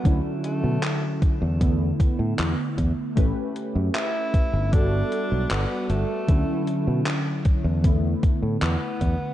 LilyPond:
<<
  \new Staff \with { instrumentName = "Synth keys" } { \time 4/4 \key d \major \tempo 4 = 77 <d fis cis' e'>2 <d a b e'>2 | <a cis' g' b'>2 <g b fis' a'>2 | <d fis cis' e'>2 <d a b e'>2 | }
  \new Staff \with { instrumentName = "Tenor saxophone" } { \time 4/4 \key d \major b8 a4 r2 r8 | r4 e'4 d'4 b8 a8~ | a4 r2 b4 | }
  \new Staff \with { instrumentName = "Fingered electric bass" } { \clef bass \time 4/4 \key d \major d,16 r8 b,16 r8. e,8 r8 a,16 e,16 r16 e,16 r16 | a,,16 r8 fis,16 r8. g,,8 r8 b,,16 g,,16 r16 g,,16 r16 | d,16 r8 b,16 r8. e,8 r8 a,16 e,16 r16 e,16 r16 | }
  \new DrumStaff \with { instrumentName = "Drums" } \drummode { \time 4/4 <hh bd>8 hh8 <hc hh>8 <hh bd>8 <hh bd>8 <hh bd>8 <hc hh>8 <hh bd>8 | <hh bd>8 hh8 <hc hh>8 <hh bd>8 <hh bd>8 hh8 <hc hh>8 hh8 | <hh bd>8 hh8 <hc hh>8 <hh bd>8 <hh bd>8 <hh bd>8 <hc hh>8 <hh bd>8 | }
>>